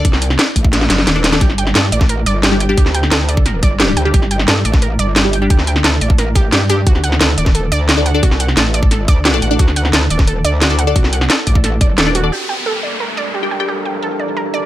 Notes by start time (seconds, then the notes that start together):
0.05 C2, kick, closed hi-hat
0.13 snare
0.22 closed hi-hat
0.30 snare
0.39 snare, closed hi-hat
0.56 A1, kick, closed hi-hat
0.64 kick
0.73 snare, closed hi-hat
0.81 snare
0.90 F#1, snare, closed hi-hat
0.99 snare
1.07 D#1, snare, closed hi-hat
1.16 D4 A4 D5
1.24 snare, closed hi-hat
1.33 D4 A4 D5, snare
1.41 G1 G4, kick, closed hi-hat
1.50 snare
1.58 G5, closed hi-hat
1.67 snare
1.75 G2 A4, snare, closed hi-hat
1.92 A1 D5, closed hi-hat
2.01 kick, snare
2.09 A#4, closed hi-hat
2.26 G1 D5, closed hi-hat
2.43 G4, snare, closed hi-hat
2.52 G3 D4 G4
2.60 G5, closed hi-hat
2.69 G3 D4 G4
2.77 D2 G4, kick, closed hi-hat
2.86 snare
2.95 G5, closed hi-hat
3.03 snare
3.12 D2 A4, snare, closed hi-hat
3.29 D5, closed hi-hat
3.37 kick
3.46 A#4, snare, closed hi-hat
3.63 G1 D5, kick, closed hi-hat
3.80 G4, snare, closed hi-hat
3.88 G3 D4 G4
3.97 D2 G5, closed hi-hat
4.05 G3 D4 G4
4.14 G1 G4, kick, closed hi-hat
4.22 snare
4.31 G5, closed hi-hat
4.39 snare
4.48 G2 A4, snare, closed hi-hat
4.65 A1 D5, closed hi-hat
4.74 kick, snare
4.82 A#4, closed hi-hat
4.99 G1 D5, closed hi-hat
5.16 G4, snare, closed hi-hat
5.25 G3 D4 G4
5.33 G5, closed hi-hat
5.42 G3 D4 G4
5.50 D2 G4, kick, closed hi-hat
5.59 snare
5.67 G5, closed hi-hat
5.76 snare
5.84 D2 A4, snare, closed hi-hat
6.01 A1 D5, closed hi-hat
6.10 kick
6.18 A#4, snare, closed hi-hat
6.35 G4, kick, closed hi-hat
6.52 G2 G4, snare, closed hi-hat
6.70 G3 D4 G4, closed hi-hat
6.87 D2 F#4, kick, closed hi-hat
6.95 snare
7.04 F#5, closed hi-hat
7.12 snare
7.21 D2 A4, snare, closed hi-hat
7.38 D#1 D5, closed hi-hat
7.46 kick, snare
7.55 A4, closed hi-hat
7.72 D2 D5, closed hi-hat
7.89 F#4, snare, closed hi-hat
7.97 D4 A4 D5
8.06 F#5, closed hi-hat
8.14 D4 A4 D5
8.23 C2 F#4, kick, closed hi-hat
8.31 snare
8.40 F#5, closed hi-hat
8.48 snare
8.57 A1 A4, snare, closed hi-hat
8.74 D5, closed hi-hat
8.83 kick
8.91 A4, snare, closed hi-hat
9.08 D2 D5, kick, closed hi-hat
9.25 F#4, snare, closed hi-hat
9.34 D4 A4 D5
9.42 A1 F#5, closed hi-hat
9.51 D4 A4 D5
9.59 D2 F#4, kick, closed hi-hat
9.68 snare
9.76 F#5, closed hi-hat
9.85 snare
9.93 D2 A4, snare, closed hi-hat
10.10 D#1 D5, closed hi-hat
10.19 kick, snare
10.27 A4, closed hi-hat
10.44 D2 D5, closed hi-hat
10.62 F#4, snare, closed hi-hat
10.70 D4 A4 D5
10.79 F#5, closed hi-hat
10.87 D4 A4 D5
10.96 C2 F#4, kick, closed hi-hat
11.04 snare
11.13 F#5, closed hi-hat
11.21 snare
11.30 A4, snare, closed hi-hat
11.47 A1 D5, kick, closed hi-hat
11.55 kick
11.64 A4, snare, closed hi-hat
11.81 F#1 D5, kick, closed hi-hat
11.98 D#1 A4, snare, closed hi-hat
12.06 D4 A4 D5
12.15 F#4, closed hi-hat
12.24 D4 A4 D5
12.32 G3 D4 G4 A4 A#4, downlifter
12.49 G5
12.66 A4
12.83 D5
13.00 A#4
13.17 D5
13.34 G4
13.43 G4 D5 G5
13.51 G5
13.60 G4 D5 G5
13.68 G4
13.85 G5
14.03 A4
14.20 D5
14.37 A#4
14.54 D5